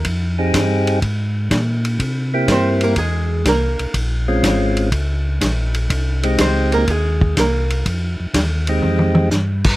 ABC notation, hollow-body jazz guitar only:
X:1
M:4/4
L:1/8
Q:"Swing" 1/4=123
K:Fm
V:1 name="Hollow-body jazz guitar"
z8 | z2 [Cc] [B,B] [A,A]2 [B,B]2 | z8 | z2 [Cc] [B,B] [A,A]2 [B,B]2 |
z8 |]